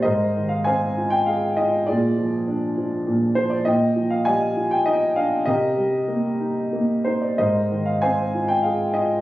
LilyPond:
<<
  \new Staff \with { instrumentName = "Grand piano" } { \time 3/4 \key aes \lydian \tempo 4 = 99 << { ees''8. f''16 aes''8. g''16 f''8 ees''8 | d''2~ d''8 c''16 d''16 | ees''8. f''16 aes''8. g''16 ees''8 f''8 | ees''2~ ees''8 c''16 d''16 |
ees''8. f''16 aes''8. g''16 f''8 ees''8 | } \\ { <bes' c''>4 <c'' f''>4. r8 | <f' aes'>2~ <f' aes'>8 r8 | g''4 <d'' ees''>4. r8 | <g' bes'>2~ <g' bes'>8 r8 |
<bes' c''>4 <c'' f''>4. r8 | } >> }
  \new Staff \with { instrumentName = "Grand piano" } { \time 3/4 \key aes \lydian aes,8 ees8 c'8 f'8 aes'8 f'8 | bes,8 f8 d'8 f8 bes,8 f8 | bes,8 f8 g8 f'8 ees'8 d'8 | c8 g8 bes8 ees'8 bes8 ees'8 |
aes,8 ees8 c'8 f'8 aes'8 f'8 | }
>>